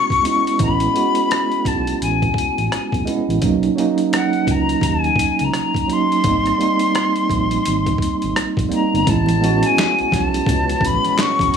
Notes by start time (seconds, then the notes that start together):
Already playing: G#3 B3 C#4 F#4 C#6
0.10 kick, closed hi-hat
0.23 G#3 B3 C#4 E4, closed hi-hat
0.47 closed hi-hat
0.58 A1 G#3 B3 C#4 E4, kick, closed hi-hat
0.62 B5
0.80 closed hi-hat
0.93 G#3 B3 C#4 F#4, closed hi-hat
1.15 closed hi-hat
1.31 cross-stick, closed hi-hat
1.52 closed hi-hat
1.65 B1 A5, kick, closed hi-hat
1.87 closed hi-hat
2.02 A1 G#5, closed hi-hat
2.22 kick, closed hi-hat
2.34 kick
2.38 closed hi-hat
2.58 A1, closed hi-hat
2.72 B1, cross-stick, closed hi-hat
2.92 B1, kick, closed hi-hat
3.05 G#3 B3 C#4 E4, closed hi-hat
3.28 A1, closed hi-hat
3.41 B1 F#3 A#3 C#4 D#4, kick, closed hi-hat
3.63 closed hi-hat
3.76 F#3 A#3 C#4 D#4, closed hi-hat
3.98 closed hi-hat
4.13 F#5, cross-stick, closed hi-hat
4.33 closed hi-hat
4.47 C#2 A#5, kick, closed hi-hat
4.69 closed hi-hat
4.81 D#2, kick, closed hi-hat
4.86 G#5
5.04 closed hi-hat
5.16 kick, closed hi-hat
5.39 C#2, closed hi-hat
5.44 A#5
5.54 cross-stick, closed hi-hat
5.74 kick, closed hi-hat
5.87 F#3 A#3 C#4 D#4, closed hi-hat
5.92 C6
6.12 closed hi-hat
6.23 G#1 G3 A#3 C4 D#4, kick, closed hi-hat
6.46 cross-stick, closed hi-hat
6.58 G3 A#3 C4 D#4, closed hi-hat
6.79 closed hi-hat
6.95 cross-stick, closed hi-hat
7.16 closed hi-hat
7.30 A#1, kick, closed hi-hat
7.51 closed hi-hat
7.65 G#1, closed hi-hat
7.86 kick, closed hi-hat
7.98 kick, closed hi-hat
8.22 G#1, closed hi-hat
8.36 A#1, cross-stick, closed hi-hat
8.57 A#1, kick, closed hi-hat
8.69 G3 A#3 C4, closed hi-hat
8.73 D#4 A#5
8.94 G1, closed hi-hat
9.05 A1 B2 G#3 B3 C#4 E4 A5, kick, closed hi-hat
9.26 closed hi-hat, muted conga, high conga
9.41 G#3 B3 C#4 F#4, closed hi-hat
9.63 G#5, closed hi-hat
9.77 snare, clap, closed hi-hat, muted conga, high conga
9.98 B1, closed hi-hat, muted conga
10.11 B1 A5, kick, snare, closed hi-hat, high conga
10.34 closed hi-hat
10.46 C#2, kick, closed hi-hat, muted conga, low conga
10.69 closed hi-hat, muted conga
10.81 A1, kick, closed hi-hat, high conga
10.85 B5
11.04 closed hi-hat, high conga
11.16 snare, clap, closed hi-hat, muted conga
11.21 C#6
11.39 G#1, kick, closed hi-hat, high conga
11.54 closed hi-hat